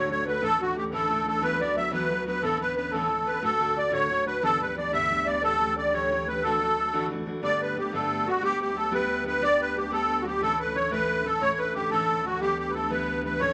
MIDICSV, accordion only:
0, 0, Header, 1, 2, 480
1, 0, Start_track
1, 0, Tempo, 332779
1, 606, Time_signature, 6, 3, 24, 8
1, 19517, End_track
2, 0, Start_track
2, 0, Title_t, "Accordion"
2, 0, Program_c, 0, 21
2, 163, Note_on_c, 0, 73, 85
2, 369, Note_off_c, 0, 73, 0
2, 394, Note_on_c, 0, 71, 75
2, 622, Note_off_c, 0, 71, 0
2, 624, Note_on_c, 0, 69, 108
2, 879, Note_off_c, 0, 69, 0
2, 891, Note_on_c, 0, 66, 77
2, 1094, Note_off_c, 0, 66, 0
2, 1121, Note_on_c, 0, 67, 70
2, 1220, Note_off_c, 0, 67, 0
2, 1353, Note_on_c, 0, 69, 85
2, 1819, Note_off_c, 0, 69, 0
2, 1841, Note_on_c, 0, 69, 84
2, 2063, Note_on_c, 0, 71, 94
2, 2067, Note_off_c, 0, 69, 0
2, 2318, Note_on_c, 0, 74, 78
2, 2320, Note_off_c, 0, 71, 0
2, 2528, Note_off_c, 0, 74, 0
2, 2552, Note_on_c, 0, 76, 86
2, 2761, Note_off_c, 0, 76, 0
2, 2781, Note_on_c, 0, 71, 83
2, 3230, Note_off_c, 0, 71, 0
2, 3274, Note_on_c, 0, 71, 74
2, 3503, Note_on_c, 0, 69, 91
2, 3505, Note_off_c, 0, 71, 0
2, 3736, Note_off_c, 0, 69, 0
2, 3766, Note_on_c, 0, 71, 85
2, 3962, Note_off_c, 0, 71, 0
2, 3984, Note_on_c, 0, 71, 70
2, 4221, Note_off_c, 0, 71, 0
2, 4228, Note_on_c, 0, 69, 72
2, 4706, Note_on_c, 0, 71, 74
2, 4724, Note_off_c, 0, 69, 0
2, 4943, Note_off_c, 0, 71, 0
2, 4953, Note_on_c, 0, 69, 95
2, 5447, Note_off_c, 0, 69, 0
2, 5448, Note_on_c, 0, 74, 83
2, 5652, Note_off_c, 0, 74, 0
2, 5675, Note_on_c, 0, 73, 91
2, 6121, Note_off_c, 0, 73, 0
2, 6161, Note_on_c, 0, 71, 81
2, 6392, Note_off_c, 0, 71, 0
2, 6402, Note_on_c, 0, 69, 108
2, 6654, Note_off_c, 0, 69, 0
2, 6660, Note_on_c, 0, 71, 78
2, 6864, Note_off_c, 0, 71, 0
2, 6886, Note_on_c, 0, 74, 70
2, 7093, Note_off_c, 0, 74, 0
2, 7111, Note_on_c, 0, 76, 98
2, 7591, Note_on_c, 0, 74, 78
2, 7609, Note_off_c, 0, 76, 0
2, 7828, Note_off_c, 0, 74, 0
2, 7842, Note_on_c, 0, 69, 99
2, 8287, Note_off_c, 0, 69, 0
2, 8337, Note_on_c, 0, 74, 79
2, 8561, Note_on_c, 0, 73, 77
2, 8562, Note_off_c, 0, 74, 0
2, 9054, Note_on_c, 0, 71, 75
2, 9055, Note_off_c, 0, 73, 0
2, 9278, Note_on_c, 0, 69, 87
2, 9281, Note_off_c, 0, 71, 0
2, 10190, Note_off_c, 0, 69, 0
2, 10727, Note_on_c, 0, 74, 104
2, 10980, Note_off_c, 0, 74, 0
2, 10986, Note_on_c, 0, 71, 74
2, 11212, Note_off_c, 0, 71, 0
2, 11225, Note_on_c, 0, 67, 68
2, 11426, Note_off_c, 0, 67, 0
2, 11449, Note_on_c, 0, 69, 82
2, 11926, Note_on_c, 0, 66, 79
2, 11940, Note_off_c, 0, 69, 0
2, 12158, Note_off_c, 0, 66, 0
2, 12170, Note_on_c, 0, 67, 108
2, 12397, Note_off_c, 0, 67, 0
2, 12429, Note_on_c, 0, 67, 76
2, 12648, Note_on_c, 0, 69, 82
2, 12653, Note_off_c, 0, 67, 0
2, 12879, Note_off_c, 0, 69, 0
2, 12891, Note_on_c, 0, 71, 84
2, 13333, Note_off_c, 0, 71, 0
2, 13375, Note_on_c, 0, 71, 80
2, 13602, Note_off_c, 0, 71, 0
2, 13604, Note_on_c, 0, 74, 108
2, 13858, Note_off_c, 0, 74, 0
2, 13868, Note_on_c, 0, 71, 85
2, 14090, Note_on_c, 0, 67, 69
2, 14093, Note_off_c, 0, 71, 0
2, 14297, Note_off_c, 0, 67, 0
2, 14322, Note_on_c, 0, 69, 91
2, 14742, Note_on_c, 0, 66, 56
2, 14756, Note_off_c, 0, 69, 0
2, 14796, Note_off_c, 0, 66, 0
2, 14809, Note_on_c, 0, 67, 76
2, 15016, Note_off_c, 0, 67, 0
2, 15035, Note_on_c, 0, 69, 99
2, 15268, Note_off_c, 0, 69, 0
2, 15290, Note_on_c, 0, 71, 74
2, 15517, Note_on_c, 0, 73, 80
2, 15523, Note_off_c, 0, 71, 0
2, 15729, Note_off_c, 0, 73, 0
2, 15748, Note_on_c, 0, 71, 85
2, 16235, Note_on_c, 0, 69, 80
2, 16246, Note_off_c, 0, 71, 0
2, 16462, Note_on_c, 0, 73, 93
2, 16470, Note_off_c, 0, 69, 0
2, 16715, Note_on_c, 0, 71, 83
2, 16725, Note_off_c, 0, 73, 0
2, 16931, Note_off_c, 0, 71, 0
2, 16949, Note_on_c, 0, 67, 81
2, 17163, Note_off_c, 0, 67, 0
2, 17169, Note_on_c, 0, 69, 93
2, 17675, Note_off_c, 0, 69, 0
2, 17677, Note_on_c, 0, 66, 70
2, 17886, Note_off_c, 0, 66, 0
2, 17900, Note_on_c, 0, 67, 97
2, 18143, Note_off_c, 0, 67, 0
2, 18164, Note_on_c, 0, 67, 80
2, 18331, Note_on_c, 0, 71, 56
2, 18336, Note_off_c, 0, 67, 0
2, 18385, Note_off_c, 0, 71, 0
2, 18385, Note_on_c, 0, 69, 74
2, 18621, Note_off_c, 0, 69, 0
2, 18621, Note_on_c, 0, 71, 79
2, 19070, Note_off_c, 0, 71, 0
2, 19107, Note_on_c, 0, 71, 72
2, 19328, Note_on_c, 0, 73, 100
2, 19340, Note_off_c, 0, 71, 0
2, 19517, Note_off_c, 0, 73, 0
2, 19517, End_track
0, 0, End_of_file